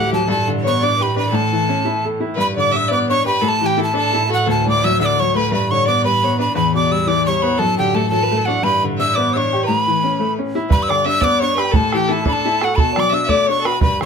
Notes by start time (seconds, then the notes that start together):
Already playing: D2 A2 E3 A3 G4 F#5
0.13 F#3 A5
0.27 G2 A4 A5
0.48 D3
0.63 B3 C#5
0.67 C#6
0.79 D4 D5
0.84 D6
0.98 G4 B4
1.03 B5
1.16 D4 B4 B5
1.29 A2 A4
1.35 A5
1.53 E3
1.69 C#4
1.85 E4
2.05 A4
2.20 E4
2.35 G2 E3 B4
2.40 A2 B5
2.56 D3 D5 D6
2.71 D4 E5
2.77 E6
2.88 B3 D5
2.92 D6
3.09 D4 C#5 C#6
3.25 G4 B4 B5
3.41 A2 A4 B5
3.49 A5
3.61 E3 G4
3.66 G5
3.77 E4 A4
3.83 A5
3.93 D4 A4
3.98 A5
4.13 E4
4.29 F#4 A4
4.34 F#5
4.46 D2 A4
4.50 A5
4.66 A2 D5 D6
4.84 F#3 E5 E6
4.95 E5
5.00 D3 D5 E6
5.06 D6
5.20 F#3 C#5 C#6
5.35 A3 B4 B5
5.52 G2 B4 B5
5.71 D3 C#5 C#6
5.85 B3 D5 D6
6.04 G3 B4 B5
6.23 B3 C#5
6.37 D4 B4 B5
6.55 E2 A2 E3 B4 B5
6.74 B2 D5 D6
6.91 G3 E6
7.07 E3 D5 D6
7.26 G3 C#5 C#6
7.42 B3 B5
7.57 F#2 A4 A5
7.78 D3 G4 G5
7.95 A3 A4 A5
8.10 F#3 A4 A5
8.23 B4
8.31 A3
8.36 A4
8.45 D4 F#4 F#5
8.63 G2 B4 B5
8.84 D3
8.98 D4 E5 E6
9.14 B3 D5 D6
9.31 C#5 E6
9.36 D4 C#6
9.53 G4
9.63 B4 A#5
9.68 A2
9.79 B5
9.87 E3
10.04 C#4
10.19 A3
10.39 C#4
10.55 E4
10.70 G2 B4 B5, bodhran
10.83 E6
10.88 D3 D5 D6, bodhran
11.05 D4 E5 E6
11.21 B3 D5 D6, bodhran
11.39 D4 C#5 C#6
11.56 G4 B4 B5, bodhran
11.71 A2 A4, bodhran
11.76 A5
11.93 E3 G4 G5, bodhran
12.07 E4 A4
12.13 A5
12.23 D4 A4, bodhran
12.28 B5
12.33 A5
12.45 E4
12.61 F#4 A4 F#5, bodhran
12.75 B2 A4 B5, bodhran
12.80 A5
12.94 F#3 D5, bodhran
13.00 D6
13.09 D4 E5
13.14 E6
13.24 D5 E5
13.29 A3 D6, bodhran
13.46 D4 C#5
13.50 C#6
13.60 A4
13.64 F#4 B4 B5, bodhran
13.81 G2 B4 B5, bodhran
14.00 D3 C#5, bodhran